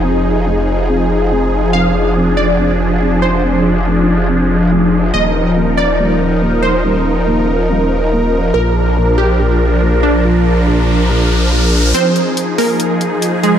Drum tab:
HH |--------|--------|--------|--------|

HH |--------|--------|--------|xxxoxxxx|